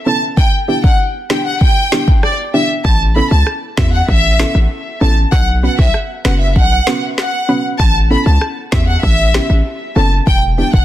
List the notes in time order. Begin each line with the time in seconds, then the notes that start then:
0.06 B3 C#4 E4 A4 A5
0.37 G5, kick
0.68 B3 D4 E4 G4 G5
0.84 F#5, kick
1.30 B3 D4 E4 G4 G5, snare
1.45 F#5
1.61 G5, kick
1.92 B3 D4 E4 G4, snare
2.08 kick
2.23 D5, cross-stick
2.54 B3 D4 E4 G4 E5
2.85 A1 A5, kick
3.16 B3 C#4 E4 A4 B5
3.31 C#2 A5
3.47 cross-stick
3.77 E2 B3 C#4 E4 F#4 E5, kick, snare
3.93 F#5
4.08 A1 E5, kick
4.39 B3 C#4 E4 A4, snare
4.55 A1
5.01 A1 B3 C#4 E4 A4 A5
5.32 B1 F#5, kick
5.63 B3 C#4 F#4 B4 F#5
5.79 B1 E5, kick
5.94 cross-stick
6.25 F#1 B3 C#4 F#4 B4 F#5, snare
6.40 E5
6.56 B1 F#5, kick
6.87 B3 C#4 F#4 B4, snare
7.18 F#5, snare
7.49 B3 C#4 F#4 B4
7.80 A1 A5, kick
8.10 B3 C#4 E4 A4 B5
8.26 C#2 A5
8.41 cross-stick
8.72 E2 B3 C#4 E4 G4 E5, kick, snare
8.88 F#5
9.03 A1 E5, kick
9.34 B3 C#4 E4 G4, snare
9.50 A1
9.96 F#1 B3 C#4 E4 A4 A5
10.27 E1 G5, kick
10.58 B3 D4 E4 G4 G5
10.73 E1 F#5, kick